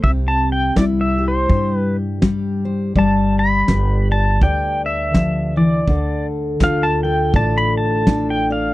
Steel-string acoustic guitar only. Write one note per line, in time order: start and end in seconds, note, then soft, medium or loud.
0.00 0.77 C4 soft
0.04 2.93 C3 medium
0.04 1.18 G4 soft
0.77 1.47 G3 medium
0.77 2.93 E4 medium
1.18 1.49 G4 medium
1.48 2.21 G3 soft
1.48 2.21 G4 medium
2.22 2.95 G3 medium
2.22 2.92 G4 soft
2.65 2.93 C5 medium
2.96 5.88 G3 medium
2.96 4.11 D5 medium
3.69 5.84 G4 medium
3.69 5.85 B4 medium
4.11 4.43 D5 medium
4.42 5.85 D3 medium
4.42 5.85 D5 medium
5.15 5.56 F3 medium
5.56 5.88 E3 medium
5.88 8.74 D3 medium
5.88 7.03 A4 medium
6.62 8.06 D4 medium
6.62 8.74 F4 medium
7.04 8.07 A4 medium
7.35 8.74 A2 medium
7.35 8.49 D5 medium
8.07 8.74 D4 medium
8.07 8.74 A4 medium
8.50 8.74 D5 medium